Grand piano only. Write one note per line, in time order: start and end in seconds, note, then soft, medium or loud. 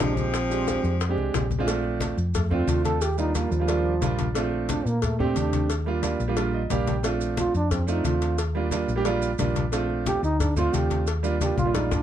0.00 0.32 G#3 medium
0.00 0.32 C4 medium
0.00 0.33 D#4 medium
0.00 0.33 G4 medium
0.50 0.91 G#3 medium
0.50 0.92 C4 medium
0.50 0.92 D4 medium
0.50 0.92 G4 medium
1.09 1.44 G#3 medium
1.09 1.44 C4 medium
1.09 1.45 D4 medium
1.09 1.45 G4 medium
1.59 1.67 G#3 medium
1.59 1.66 C4 medium
1.59 1.66 D4 medium
1.59 1.67 F4 loud
1.67 2.14 A3 loud
1.67 2.14 C4 medium
1.67 2.15 D4 medium
1.67 2.15 F4 loud
2.50 2.98 A3 medium
2.50 2.98 C4 medium
2.50 2.98 D4 medium
2.50 2.99 F4 loud
3.17 3.30 G3 medium
3.17 3.30 A#3 medium
3.17 3.30 D4 medium
3.17 3.30 F4 medium
3.34 3.52 G3 medium
3.34 3.53 A#3 medium
3.34 3.53 D4 medium
3.34 3.53 F4 medium
3.60 3.66 G3 medium
3.60 3.66 A#3 medium
3.60 3.66 D4 medium
3.60 3.67 F4 medium
3.67 3.91 G3 medium
3.67 3.92 A#3 medium
3.67 3.92 D4 medium
3.67 3.93 F4 loud
4.01 4.25 G3 loud
4.01 4.25 A#3 medium
4.01 4.26 D4 medium
4.01 4.26 F4 loud
4.35 4.82 A3 medium
4.35 4.82 C4 medium
4.35 4.83 D4 medium
4.35 4.83 F4 loud
5.19 5.66 A3 medium
5.19 5.66 C4 medium
5.19 5.67 D4 medium
5.19 5.67 G4 loud
5.86 5.98 G3 medium
5.86 5.98 A#3 medium
5.86 5.99 D4 medium
5.86 5.99 F4 loud
6.02 6.20 G3 medium
6.02 6.21 A#3 medium
6.02 6.21 D4 medium
6.02 6.21 F4 medium
6.28 6.34 G3 loud
6.28 6.34 A#3 medium
6.28 6.35 D4 medium
6.28 6.35 F4 loud
6.36 6.60 G3 medium
6.36 6.60 A#3 medium
6.36 6.61 D4 medium
6.36 6.61 F4 loud
6.54 6.70 D#5 medium
6.70 6.94 G3 medium
6.70 6.94 A#3 medium
6.70 6.94 D4 medium
6.70 6.95 G4 loud
6.70 6.86 F5 medium
6.87 7.03 G5 medium
7.03 7.51 A3 medium
7.03 7.51 C4 medium
7.03 7.51 D4 medium
7.03 7.51 F4 loud
7.87 8.34 A3 medium
7.87 8.35 C4 medium
7.87 8.35 D4 medium
7.87 8.35 F4 loud
8.55 8.67 G3 medium
8.55 8.67 A#3 medium
8.55 8.67 D4 medium
8.55 8.68 F4 loud
8.71 8.89 G3 medium
8.71 8.89 A#3 medium
8.71 8.90 D4 medium
8.71 8.90 F4 loud
8.96 9.02 G3 medium
8.96 9.03 A#3 medium
8.96 9.03 D4 medium
8.96 9.03 G4 loud
9.05 9.29 G3 loud
9.05 9.29 A#3 medium
9.05 9.29 D4 medium
9.05 9.30 F4 loud
9.39 9.62 G3 medium
9.39 9.63 A#3 medium
9.39 9.63 D4 medium
9.39 9.63 F4 medium
9.72 10.19 A3 medium
9.72 10.20 C4 medium
9.72 10.20 D4 medium
9.72 10.20 F4 loud
10.56 11.04 A3 medium
10.56 11.04 C4 medium
10.56 11.04 D4 medium
10.56 11.05 F4 loud
11.23 11.35 G3 loud
11.23 11.36 A#3 medium
11.23 11.36 D4 medium
11.23 11.36 F4 loud
11.40 11.58 G3 medium
11.40 11.58 A#3 medium
11.40 11.59 D4 medium
11.40 11.59 F4 medium
11.65 11.72 G3 medium
11.65 11.72 A#3 medium
11.65 11.72 D4 medium
11.65 11.73 F4 medium
11.74 11.98 G3 medium
11.74 11.98 A#3 medium
11.74 11.98 D4 medium
11.74 11.99 F4 medium